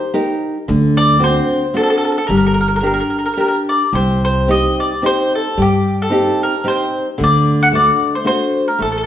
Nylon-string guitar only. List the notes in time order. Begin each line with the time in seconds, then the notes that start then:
0.14 D#4 G4 A#4
0.68 D3
1.19 C4 D4 F#4
1.74 C4 D4 F#4
2.30 G3
2.83 D4 G4 A#4
3.37 D4 G4 A#4
3.93 C3
4.48 C4 D#4 G4
5.02 C4 D#4 G4
5.57 G3
6.10 C4 D#4 G4
6.64 C4 D#4 G4
7.18 D3
7.72 A3 D4 F#4
8.24 A3 D4 F#4
8.79 A3